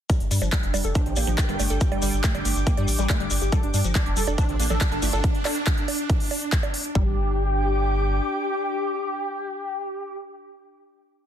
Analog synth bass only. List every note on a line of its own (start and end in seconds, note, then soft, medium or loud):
0.20 0.28 G1 medium
0.31 0.39 G2 loud
0.42 0.49 G1 medium
0.63 0.71 F1 medium
0.74 0.81 F1 loud
0.85 0.92 F1 loud
1.06 1.14 A1 medium
1.17 1.24 A1 loud
1.27 1.35 A1 medium
1.49 1.56 G1 medium
1.60 1.67 G1 medium
1.70 1.78 G1 medium
1.92 1.99 G1 medium
2.02 2.10 G1 loud
2.13 2.21 G1 medium
2.35 2.42 G1 medium
2.45 2.53 G1 loud
2.56 2.64 G1 loud
2.77 2.85 G2 medium
2.88 2.96 A1 loud
2.99 3.06 A1 medium
3.20 3.28 G1 medium
3.31 3.39 G1 loud
3.42 3.49 G1 medium
3.63 3.71 G1 medium
3.74 3.81 G2 loud
3.85 3.92 G1 medium
4.06 4.14 F1 medium
4.17 4.24 F1 loud
4.27 4.35 F1 medium
4.49 4.56 A1 medium
4.60 4.67 A1 loud
4.70 4.78 A1 medium
4.92 4.99 G1 medium
5.02 5.10 G1 loud
5.13 5.21 G1 loud
6.95 8.20 G1 loud